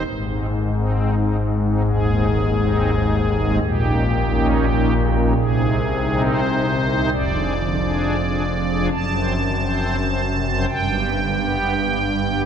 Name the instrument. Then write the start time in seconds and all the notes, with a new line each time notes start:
pipe organ
0.06 G#1 G#2
0.27 C4 D#4
0.51 D#3
0.73 C4 D#4
0.95 D#4
1.17 C4 D#4
1.40 G#3
1.64 C4 D#4
1.84 D#1 D#2 G#4
2.08 C4 D#4
2.31 D#3
2.54 C4 D#4
2.97 C4 D#4
3.19 G#3
3.41 C4 D#4
3.62 A#1 A#2 G4
3.85 C#4 D#4
4.07 D#3
4.29 C#4 D#4
4.50 G4
4.72 C#4 D#4
4.93 A#3
5.01 G#4
5.09 G4
5.14 C#4 D#4
5.18 F4
5.27 G4
5.35 C2 C3 G#4
5.56 C4 D#4
5.80 C4
6.02 C4 D#4
6.24 C5
6.47 C4 D#4
6.69 D#3
6.91 C4 D#4
7.12 F1 F2 D5
7.35 D4 G#4
7.56 D3
7.79 D4 G#4
8.23 D4 G#4
8.46 F3
8.70 D4 G#4
8.92 F#1 F#2 A5
9.15 C4 C5
9.37 D#3
9.59 C4 C5
10.03 C4 C5
10.25 C3
10.47 C4 C5
10.69 G1 G2 G5
10.92 B3 G4
11.14 D3
11.36 B3 G4
11.80 B3 G4
12.03 G3
12.25 B3 G4